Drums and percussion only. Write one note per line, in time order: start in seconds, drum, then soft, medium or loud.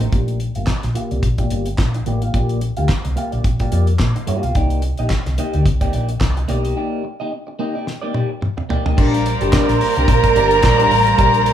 0.01 closed hi-hat soft
0.12 kick loud
0.12 closed hi-hat medium
0.28 closed hi-hat soft
0.40 closed hi-hat medium
0.55 closed hi-hat soft
0.66 kick medium
0.66 snare medium
0.66 clap medium
0.83 snare soft
0.83 closed hi-hat soft
0.95 closed hi-hat medium
1.11 closed hi-hat soft
1.23 kick loud
1.23 closed hi-hat medium
1.38 kick medium
1.38 closed hi-hat soft
1.50 closed hi-hat medium
1.66 closed hi-hat soft
1.78 kick loud
1.78 snare loud
1.78 clap medium
1.94 closed hi-hat soft
2.06 closed hi-hat medium
2.22 closed hi-hat soft
2.34 kick medium
2.34 closed hi-hat medium
2.49 closed hi-hat soft
2.61 closed hi-hat medium
2.77 closed hi-hat soft
2.88 kick medium
2.88 snare medium
2.88 clap medium
3.05 closed hi-hat soft
3.17 closed hi-hat medium
3.32 closed hi-hat soft
3.44 kick loud
3.44 closed hi-hat medium
3.60 kick medium
3.60 closed hi-hat soft
3.72 closed hi-hat medium
3.87 closed hi-hat soft
3.99 kick medium
3.99 snare loud
3.99 clap medium
4.16 closed hi-hat soft
4.27 closed hi-hat medium
4.43 closed hi-hat soft
4.55 kick loud
4.55 closed hi-hat medium
4.70 closed hi-hat soft
4.82 closed hi-hat medium
4.97 closed hi-hat soft
5.09 kick medium
5.09 snare medium
5.09 clap medium
5.26 snare soft
5.26 closed hi-hat soft
5.38 closed hi-hat medium
5.53 closed hi-hat soft
5.66 kick loud
5.66 closed hi-hat medium
5.81 kick medium
5.81 closed hi-hat soft
5.93 closed hi-hat medium
6.09 closed hi-hat soft
6.20 kick medium
6.20 snare loud
6.20 clap medium
6.37 closed hi-hat soft
6.49 closed hi-hat medium
6.65 closed hi-hat soft
7.87 snare medium
8.14 high tom medium
8.42 mid tom medium
8.58 mid tom medium
8.70 floor tom medium
8.86 floor tom medium
8.98 kick loud
8.98 crash loud
9.14 closed hi-hat soft
9.26 closed hi-hat medium
9.41 closed hi-hat soft
9.53 kick loud
9.53 snare loud
9.53 clap medium
9.69 snare soft
9.69 closed hi-hat soft
9.81 open hi-hat medium
9.96 closed hi-hat soft
10.08 kick loud
10.08 closed hi-hat medium
10.24 kick medium
10.24 closed hi-hat medium
10.36 closed hi-hat medium
10.51 closed hi-hat medium
10.63 kick loud
10.63 snare loud
10.63 clap medium
10.80 closed hi-hat soft
10.91 open hi-hat medium
11.07 closed hi-hat medium
11.18 kick loud
11.18 closed hi-hat medium
11.34 closed hi-hat medium
11.46 closed hi-hat medium